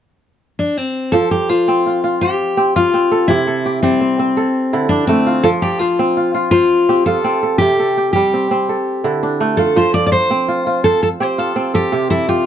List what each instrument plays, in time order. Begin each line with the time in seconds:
0.59 steel-string acoustic guitar D4
0.77 steel-string acoustic guitar C4
1.12 kora F3, steel-string acoustic guitar A4
1.31 steel-string acoustic guitar G4
1.49 steel-string acoustic guitar F4, kora C5
1.68 kora C4
1.86 kora F4
2.04 kora F4
2.21 steel-string acoustic guitar G4, kora C5
2.57 kora C4 G4
2.76 kora F4, steel-string acoustic guitar F4
2.94 kora C4
3.12 kora A4
3.28 kora C3, steel-string acoustic guitar E4
3.47 kora A4
3.66 kora G4
3.83 kora G3, steel-string acoustic guitar C4
4.01 kora C4
4.19 kora C4
4.37 kora A4
4.73 kora D3 E4
4.89 steel-string acoustic guitar D4, kora D4
5.07 kora A3, steel-string acoustic guitar C4
5.27 kora F4
5.43 kora F3, steel-string acoustic guitar A4
5.62 steel-string acoustic guitar G4, kora D5
5.79 steel-string acoustic guitar F4, kora C5
5.99 kora C4
6.17 kora F4
6.34 kora F4
6.51 steel-string acoustic guitar F4, kora C5
6.89 kora C4 G4
7.06 kora F4, steel-string acoustic guitar A4
7.24 kora C4
7.43 kora A4
7.58 kora C3, steel-string acoustic guitar G4
7.79 kora A4
7.97 kora G4
8.13 kora G3, steel-string acoustic guitar G4
8.34 kora C4
8.51 kora C4
8.69 kora A4
9.04 kora D3 E4
9.23 kora D4
9.41 kora A3
9.57 kora F4, steel-string acoustic guitar A4
9.76 kora F3, steel-string acoustic guitar C5
9.94 steel-string acoustic guitar D5, kora D5
10.06 steel-string acoustic guitar D5
10.12 steel-string acoustic guitar C5, kora C5
10.31 kora C4
10.48 kora F4
10.67 kora F4
10.84 steel-string acoustic guitar A4, kora C5
11.03 steel-string acoustic guitar A4
11.20 kora C4 G4, steel-string acoustic guitar C5
11.38 kora F4, steel-string acoustic guitar A4
11.56 kora C4
11.74 steel-string acoustic guitar G4, kora A4
11.92 kora C3
12.10 steel-string acoustic guitar E4, kora A4
12.29 steel-string acoustic guitar F4, kora G4